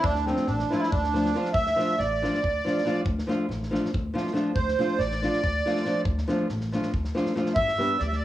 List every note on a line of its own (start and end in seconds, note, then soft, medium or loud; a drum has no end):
0.02 0.30 D2 medium
0.02 0.25 D4 loud
0.02 kick loud
0.15 snare soft
0.25 0.44 F3 medium
0.25 0.44 A3 medium
0.25 0.48 C4 medium
0.25 0.45 D4 medium
0.25 0.44 F4 medium
0.25 snare soft
0.37 snare soft
0.47 0.62 A1 medium
0.47 0.72 D4 medium
0.47 snare soft
0.59 snare soft
0.70 0.87 F3 medium
0.70 0.88 A3 soft
0.70 0.88 D4 medium
0.70 0.76 E4 medium
0.70 0.88 F4 medium
0.70 snare soft
0.75 0.91 E4 medium
0.75 0.81 F4 medium
0.83 snare soft
0.90 1.30 D2 medium
0.90 1.49 D4 medium
0.90 kick medium
1.04 snare soft
1.14 1.30 F3 medium
1.14 1.30 A3 medium
1.14 1.31 D4 medium
1.14 1.31 F4 medium
1.14 snare soft
1.26 snare soft
1.35 1.51 F3 medium
1.35 1.51 A3 medium
1.35 1.51 D4 medium
1.35 1.51 F4 medium
1.35 snare soft
1.45 snare soft
1.53 1.69 D2 medium
1.53 2.00 E5 medium
1.53 kick medium
1.67 snare soft
1.76 1.94 F3 medium
1.76 1.94 A3 medium
1.76 1.95 D4 medium
1.76 1.95 F4 medium
1.76 snare soft
1.98 2.25 A1 medium
1.98 3.01 D5 medium
1.98 snare soft
2.22 2.39 F3 medium
2.22 2.39 A3 medium
2.22 2.39 D4 medium
2.22 2.39 F4 medium
2.22 snare soft
2.35 snare soft
2.43 2.57 D2 medium
2.43 kick medium
2.64 2.81 F3 medium
2.64 2.82 A3 medium
2.64 2.82 D4 medium
2.64 2.82 F4 medium
2.64 snare soft
2.78 snare soft
2.85 3.01 F3 medium
2.85 3.01 A3 medium
2.85 3.01 D4 medium
2.85 3.02 F4 medium
2.85 snare soft
3.05 3.19 D2 medium
3.05 kick medium
3.18 snare soft
3.27 3.44 F3 medium
3.27 3.45 A3 medium
3.27 3.45 D4 medium
3.27 3.46 F4 medium
3.27 snare soft
3.49 3.76 A1 medium
3.49 snare soft
3.63 snare soft
3.71 3.88 F3 medium
3.71 3.89 A3 medium
3.71 3.89 D4 medium
3.71 3.89 F4 medium
3.71 snare soft
3.85 snare soft
3.93 4.07 D2 medium
3.93 kick medium
4.14 4.31 F3 medium
4.14 4.31 A3 medium
4.14 4.31 D4 medium
4.14 4.32 F4 medium
4.14 snare soft
4.27 snare soft
4.33 4.50 F3 medium
4.33 4.51 A3 medium
4.33 4.51 D4 medium
4.33 4.51 F4 medium
4.33 snare soft
4.55 4.70 D2 medium
4.55 5.01 C5 medium
4.55 kick medium
4.68 snare soft
4.79 4.95 F3 medium
4.79 4.95 A3 medium
4.79 4.96 D4 medium
4.79 4.96 F4 medium
4.79 snare soft
4.98 5.26 A1 medium
4.98 6.01 D5 medium
4.98 snare soft
5.11 snare soft
5.22 5.39 F3 medium
5.22 5.40 A3 soft
5.22 5.40 D4 medium
5.22 5.40 F4 medium
5.22 snare soft
5.33 snare soft
5.44 5.58 D2 medium
5.44 kick medium
5.66 5.82 F3 medium
5.66 5.83 A3 medium
5.66 5.83 D4 medium
5.66 5.83 F4 medium
5.66 snare soft
5.76 snare soft
5.85 6.02 F3 medium
5.85 6.02 A3 medium
5.85 6.02 D4 medium
5.85 6.03 F4 medium
5.85 snare soft
6.05 6.20 D2 medium
6.05 kick medium
6.18 snare soft
6.28 6.45 F3 medium
6.28 6.46 A3 medium
6.28 6.46 D4 medium
6.28 6.46 F4 medium
6.28 snare soft
6.49 6.77 A1 medium
6.49 snare soft
6.61 snare soft
6.72 6.90 F3 medium
6.72 6.90 A3 medium
6.72 6.91 D4 medium
6.72 6.91 F4 medium
6.72 snare soft
6.83 snare soft
6.93 7.07 D2 medium
6.93 kick medium
7.05 snare soft
7.15 7.32 F3 medium
7.15 7.32 A3 medium
7.15 7.32 D4 medium
7.15 7.33 F4 medium
7.15 snare soft
7.26 snare soft
7.35 7.52 F3 medium
7.35 7.52 A3 medium
7.35 7.52 D4 medium
7.35 7.53 F4 medium
7.35 snare soft
7.46 snare soft
7.55 7.70 G1 medium
7.55 8.01 E5 loud
7.55 kick loud
7.68 snare soft
7.78 7.96 G3 medium
7.78 7.96 B3 medium
7.78 7.96 D4 medium
7.78 7.96 G4 medium
7.78 snare soft
7.99 8.24 D2 medium
7.99 8.07 D5 medium
7.99 snare soft
8.07 8.16 E5 medium
8.12 8.24 D5 medium
8.12 snare soft